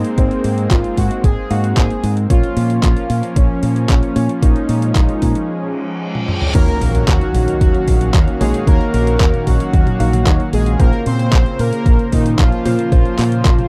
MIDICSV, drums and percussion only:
0, 0, Header, 1, 2, 480
1, 0, Start_track
1, 0, Tempo, 530973
1, 160, Time_signature, 4, 2, 24, 8
1, 12367, End_track
2, 0, Start_track
2, 0, Title_t, "Drums"
2, 41, Note_on_c, 9, 42, 48
2, 131, Note_off_c, 9, 42, 0
2, 160, Note_on_c, 9, 36, 112
2, 160, Note_on_c, 9, 42, 76
2, 251, Note_off_c, 9, 36, 0
2, 251, Note_off_c, 9, 42, 0
2, 281, Note_on_c, 9, 42, 35
2, 371, Note_off_c, 9, 42, 0
2, 400, Note_on_c, 9, 46, 107
2, 490, Note_off_c, 9, 46, 0
2, 522, Note_on_c, 9, 42, 52
2, 612, Note_off_c, 9, 42, 0
2, 640, Note_on_c, 9, 36, 111
2, 641, Note_on_c, 9, 39, 111
2, 641, Note_on_c, 9, 42, 76
2, 731, Note_off_c, 9, 36, 0
2, 731, Note_off_c, 9, 39, 0
2, 731, Note_off_c, 9, 42, 0
2, 761, Note_on_c, 9, 42, 36
2, 852, Note_off_c, 9, 42, 0
2, 880, Note_on_c, 9, 36, 58
2, 881, Note_on_c, 9, 46, 103
2, 971, Note_off_c, 9, 36, 0
2, 971, Note_off_c, 9, 46, 0
2, 1001, Note_on_c, 9, 42, 51
2, 1091, Note_off_c, 9, 42, 0
2, 1120, Note_on_c, 9, 36, 116
2, 1122, Note_on_c, 9, 42, 76
2, 1210, Note_off_c, 9, 36, 0
2, 1212, Note_off_c, 9, 42, 0
2, 1362, Note_on_c, 9, 46, 104
2, 1452, Note_off_c, 9, 46, 0
2, 1482, Note_on_c, 9, 42, 50
2, 1572, Note_off_c, 9, 42, 0
2, 1600, Note_on_c, 9, 36, 111
2, 1601, Note_on_c, 9, 39, 113
2, 1601, Note_on_c, 9, 42, 78
2, 1690, Note_off_c, 9, 36, 0
2, 1691, Note_off_c, 9, 39, 0
2, 1691, Note_off_c, 9, 42, 0
2, 1722, Note_on_c, 9, 42, 36
2, 1812, Note_off_c, 9, 42, 0
2, 1841, Note_on_c, 9, 46, 104
2, 1931, Note_off_c, 9, 46, 0
2, 1961, Note_on_c, 9, 42, 51
2, 2051, Note_off_c, 9, 42, 0
2, 2080, Note_on_c, 9, 36, 109
2, 2081, Note_on_c, 9, 42, 81
2, 2170, Note_off_c, 9, 36, 0
2, 2171, Note_off_c, 9, 42, 0
2, 2201, Note_on_c, 9, 42, 36
2, 2291, Note_off_c, 9, 42, 0
2, 2320, Note_on_c, 9, 46, 108
2, 2411, Note_off_c, 9, 46, 0
2, 2440, Note_on_c, 9, 42, 53
2, 2531, Note_off_c, 9, 42, 0
2, 2559, Note_on_c, 9, 36, 109
2, 2561, Note_on_c, 9, 39, 108
2, 2561, Note_on_c, 9, 42, 80
2, 2650, Note_off_c, 9, 36, 0
2, 2651, Note_off_c, 9, 39, 0
2, 2651, Note_off_c, 9, 42, 0
2, 2681, Note_on_c, 9, 42, 37
2, 2771, Note_off_c, 9, 42, 0
2, 2801, Note_on_c, 9, 46, 109
2, 2891, Note_off_c, 9, 46, 0
2, 2921, Note_on_c, 9, 42, 52
2, 3011, Note_off_c, 9, 42, 0
2, 3039, Note_on_c, 9, 36, 111
2, 3040, Note_on_c, 9, 42, 79
2, 3130, Note_off_c, 9, 36, 0
2, 3131, Note_off_c, 9, 42, 0
2, 3279, Note_on_c, 9, 46, 104
2, 3369, Note_off_c, 9, 46, 0
2, 3399, Note_on_c, 9, 42, 53
2, 3490, Note_off_c, 9, 42, 0
2, 3519, Note_on_c, 9, 36, 110
2, 3520, Note_on_c, 9, 39, 113
2, 3520, Note_on_c, 9, 42, 82
2, 3610, Note_off_c, 9, 36, 0
2, 3611, Note_off_c, 9, 39, 0
2, 3611, Note_off_c, 9, 42, 0
2, 3641, Note_on_c, 9, 42, 36
2, 3731, Note_off_c, 9, 42, 0
2, 3760, Note_on_c, 9, 46, 109
2, 3851, Note_off_c, 9, 46, 0
2, 3881, Note_on_c, 9, 42, 54
2, 3971, Note_off_c, 9, 42, 0
2, 3999, Note_on_c, 9, 36, 112
2, 4001, Note_on_c, 9, 42, 83
2, 4090, Note_off_c, 9, 36, 0
2, 4091, Note_off_c, 9, 42, 0
2, 4120, Note_on_c, 9, 42, 36
2, 4211, Note_off_c, 9, 42, 0
2, 4239, Note_on_c, 9, 46, 108
2, 4329, Note_off_c, 9, 46, 0
2, 4360, Note_on_c, 9, 42, 56
2, 4450, Note_off_c, 9, 42, 0
2, 4479, Note_on_c, 9, 36, 116
2, 4479, Note_on_c, 9, 39, 111
2, 4479, Note_on_c, 9, 42, 82
2, 4569, Note_off_c, 9, 39, 0
2, 4569, Note_off_c, 9, 42, 0
2, 4570, Note_off_c, 9, 36, 0
2, 4599, Note_on_c, 9, 42, 38
2, 4689, Note_off_c, 9, 42, 0
2, 4719, Note_on_c, 9, 36, 59
2, 4719, Note_on_c, 9, 46, 105
2, 4809, Note_off_c, 9, 46, 0
2, 4810, Note_off_c, 9, 36, 0
2, 4839, Note_on_c, 9, 42, 54
2, 4930, Note_off_c, 9, 42, 0
2, 5560, Note_on_c, 9, 48, 50
2, 5650, Note_off_c, 9, 48, 0
2, 5679, Note_on_c, 9, 47, 75
2, 5770, Note_off_c, 9, 47, 0
2, 5800, Note_on_c, 9, 45, 79
2, 5891, Note_off_c, 9, 45, 0
2, 5920, Note_on_c, 9, 36, 115
2, 5920, Note_on_c, 9, 42, 54
2, 5920, Note_on_c, 9, 49, 102
2, 6010, Note_off_c, 9, 36, 0
2, 6010, Note_off_c, 9, 42, 0
2, 6010, Note_off_c, 9, 49, 0
2, 6040, Note_on_c, 9, 42, 26
2, 6131, Note_off_c, 9, 42, 0
2, 6161, Note_on_c, 9, 46, 106
2, 6251, Note_off_c, 9, 46, 0
2, 6280, Note_on_c, 9, 42, 57
2, 6371, Note_off_c, 9, 42, 0
2, 6400, Note_on_c, 9, 36, 121
2, 6401, Note_on_c, 9, 39, 115
2, 6401, Note_on_c, 9, 42, 55
2, 6491, Note_off_c, 9, 36, 0
2, 6492, Note_off_c, 9, 39, 0
2, 6492, Note_off_c, 9, 42, 0
2, 6520, Note_on_c, 9, 42, 28
2, 6611, Note_off_c, 9, 42, 0
2, 6640, Note_on_c, 9, 46, 105
2, 6730, Note_off_c, 9, 46, 0
2, 6761, Note_on_c, 9, 42, 54
2, 6851, Note_off_c, 9, 42, 0
2, 6880, Note_on_c, 9, 36, 122
2, 6880, Note_on_c, 9, 42, 55
2, 6971, Note_off_c, 9, 36, 0
2, 6971, Note_off_c, 9, 42, 0
2, 7001, Note_on_c, 9, 42, 27
2, 7091, Note_off_c, 9, 42, 0
2, 7120, Note_on_c, 9, 36, 62
2, 7120, Note_on_c, 9, 46, 105
2, 7210, Note_off_c, 9, 46, 0
2, 7211, Note_off_c, 9, 36, 0
2, 7241, Note_on_c, 9, 42, 53
2, 7331, Note_off_c, 9, 42, 0
2, 7360, Note_on_c, 9, 36, 120
2, 7361, Note_on_c, 9, 39, 120
2, 7361, Note_on_c, 9, 42, 54
2, 7451, Note_off_c, 9, 36, 0
2, 7451, Note_off_c, 9, 39, 0
2, 7451, Note_off_c, 9, 42, 0
2, 7482, Note_on_c, 9, 42, 27
2, 7572, Note_off_c, 9, 42, 0
2, 7601, Note_on_c, 9, 46, 109
2, 7601, Note_on_c, 9, 48, 75
2, 7692, Note_off_c, 9, 46, 0
2, 7692, Note_off_c, 9, 48, 0
2, 7722, Note_on_c, 9, 42, 55
2, 7812, Note_off_c, 9, 42, 0
2, 7840, Note_on_c, 9, 36, 125
2, 7841, Note_on_c, 9, 42, 53
2, 7930, Note_off_c, 9, 36, 0
2, 7932, Note_off_c, 9, 42, 0
2, 7962, Note_on_c, 9, 42, 25
2, 8052, Note_off_c, 9, 42, 0
2, 8081, Note_on_c, 9, 46, 104
2, 8171, Note_off_c, 9, 46, 0
2, 8201, Note_on_c, 9, 42, 54
2, 8291, Note_off_c, 9, 42, 0
2, 8320, Note_on_c, 9, 36, 124
2, 8321, Note_on_c, 9, 39, 122
2, 8321, Note_on_c, 9, 42, 54
2, 8410, Note_off_c, 9, 36, 0
2, 8411, Note_off_c, 9, 39, 0
2, 8411, Note_off_c, 9, 42, 0
2, 8441, Note_on_c, 9, 42, 27
2, 8441, Note_on_c, 9, 48, 62
2, 8531, Note_off_c, 9, 42, 0
2, 8531, Note_off_c, 9, 48, 0
2, 8560, Note_on_c, 9, 36, 64
2, 8561, Note_on_c, 9, 46, 101
2, 8650, Note_off_c, 9, 36, 0
2, 8651, Note_off_c, 9, 46, 0
2, 8680, Note_on_c, 9, 42, 53
2, 8771, Note_off_c, 9, 42, 0
2, 8800, Note_on_c, 9, 36, 126
2, 8800, Note_on_c, 9, 42, 54
2, 8890, Note_off_c, 9, 36, 0
2, 8891, Note_off_c, 9, 42, 0
2, 8921, Note_on_c, 9, 42, 26
2, 8921, Note_on_c, 9, 48, 78
2, 9011, Note_off_c, 9, 42, 0
2, 9011, Note_off_c, 9, 48, 0
2, 9041, Note_on_c, 9, 46, 101
2, 9131, Note_off_c, 9, 46, 0
2, 9161, Note_on_c, 9, 42, 53
2, 9161, Note_on_c, 9, 48, 62
2, 9251, Note_off_c, 9, 42, 0
2, 9251, Note_off_c, 9, 48, 0
2, 9279, Note_on_c, 9, 36, 123
2, 9280, Note_on_c, 9, 39, 127
2, 9280, Note_on_c, 9, 42, 55
2, 9370, Note_off_c, 9, 36, 0
2, 9371, Note_off_c, 9, 39, 0
2, 9371, Note_off_c, 9, 42, 0
2, 9400, Note_on_c, 9, 42, 27
2, 9491, Note_off_c, 9, 42, 0
2, 9520, Note_on_c, 9, 46, 101
2, 9610, Note_off_c, 9, 46, 0
2, 9639, Note_on_c, 9, 42, 55
2, 9730, Note_off_c, 9, 42, 0
2, 9759, Note_on_c, 9, 36, 126
2, 9759, Note_on_c, 9, 42, 53
2, 9850, Note_off_c, 9, 36, 0
2, 9850, Note_off_c, 9, 42, 0
2, 9880, Note_on_c, 9, 42, 25
2, 9970, Note_off_c, 9, 42, 0
2, 10000, Note_on_c, 9, 46, 101
2, 10090, Note_off_c, 9, 46, 0
2, 10119, Note_on_c, 9, 42, 52
2, 10210, Note_off_c, 9, 42, 0
2, 10239, Note_on_c, 9, 36, 125
2, 10240, Note_on_c, 9, 39, 126
2, 10240, Note_on_c, 9, 42, 51
2, 10330, Note_off_c, 9, 36, 0
2, 10330, Note_off_c, 9, 39, 0
2, 10330, Note_off_c, 9, 42, 0
2, 10361, Note_on_c, 9, 42, 26
2, 10451, Note_off_c, 9, 42, 0
2, 10480, Note_on_c, 9, 46, 99
2, 10571, Note_off_c, 9, 46, 0
2, 10600, Note_on_c, 9, 42, 50
2, 10691, Note_off_c, 9, 42, 0
2, 10720, Note_on_c, 9, 36, 127
2, 10721, Note_on_c, 9, 42, 51
2, 10810, Note_off_c, 9, 36, 0
2, 10811, Note_off_c, 9, 42, 0
2, 10842, Note_on_c, 9, 42, 25
2, 10932, Note_off_c, 9, 42, 0
2, 10960, Note_on_c, 9, 36, 66
2, 10960, Note_on_c, 9, 46, 99
2, 11050, Note_off_c, 9, 36, 0
2, 11051, Note_off_c, 9, 46, 0
2, 11081, Note_on_c, 9, 42, 51
2, 11171, Note_off_c, 9, 42, 0
2, 11200, Note_on_c, 9, 36, 126
2, 11200, Note_on_c, 9, 39, 125
2, 11200, Note_on_c, 9, 42, 53
2, 11290, Note_off_c, 9, 36, 0
2, 11291, Note_off_c, 9, 39, 0
2, 11291, Note_off_c, 9, 42, 0
2, 11321, Note_on_c, 9, 42, 26
2, 11411, Note_off_c, 9, 42, 0
2, 11440, Note_on_c, 9, 46, 100
2, 11440, Note_on_c, 9, 48, 83
2, 11531, Note_off_c, 9, 46, 0
2, 11531, Note_off_c, 9, 48, 0
2, 11560, Note_on_c, 9, 42, 53
2, 11650, Note_off_c, 9, 42, 0
2, 11680, Note_on_c, 9, 36, 124
2, 11680, Note_on_c, 9, 42, 50
2, 11770, Note_off_c, 9, 36, 0
2, 11770, Note_off_c, 9, 42, 0
2, 11801, Note_on_c, 9, 42, 24
2, 11891, Note_off_c, 9, 42, 0
2, 11921, Note_on_c, 9, 39, 72
2, 11921, Note_on_c, 9, 46, 103
2, 12011, Note_off_c, 9, 39, 0
2, 12011, Note_off_c, 9, 46, 0
2, 12041, Note_on_c, 9, 42, 51
2, 12131, Note_off_c, 9, 42, 0
2, 12160, Note_on_c, 9, 36, 125
2, 12161, Note_on_c, 9, 39, 121
2, 12161, Note_on_c, 9, 42, 50
2, 12251, Note_off_c, 9, 36, 0
2, 12252, Note_off_c, 9, 39, 0
2, 12252, Note_off_c, 9, 42, 0
2, 12282, Note_on_c, 9, 42, 25
2, 12282, Note_on_c, 9, 48, 67
2, 12367, Note_off_c, 9, 42, 0
2, 12367, Note_off_c, 9, 48, 0
2, 12367, End_track
0, 0, End_of_file